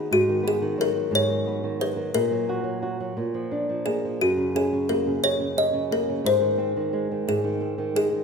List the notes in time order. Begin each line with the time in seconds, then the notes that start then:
Already playing: B3 D#4 G#4
0.11 G#2 F#4
0.29 D#3
0.43 B3
0.48 G#4
0.62 D#3
0.78 F#3 A#4
0.95 D#3
1.11 G#2
1.15 C#5
1.29 D#3
1.47 B3
1.63 D#3
1.80 F#3 B4
1.96 D#3
2.14 A#2 A#4
2.31 F#3
2.49 F#4
2.64 F#3
2.82 F#4
3.00 F#3
3.17 A#2
3.34 F3
3.51 D4
3.69 F3
3.86 A#3 G#4
4.05 F3
4.21 F#2 F#4
4.37 C#3
4.55 C#4 G#4
4.72 C#3
4.89 A#3 A#4
5.07 C#3
5.24 F#2 C#5
5.40 C#3
5.57 C#4 D#5
5.73 C#3
5.91 A#3 A#4
6.09 C#3
6.24 G#2 C5
6.40 D#3
6.58 C4
6.76 D#3
6.93 G#3
7.12 D#3
7.28 G#2 G#4
7.44 D#3
7.61 C4
7.78 D#3
7.95 G#3 G#4
8.13 D#3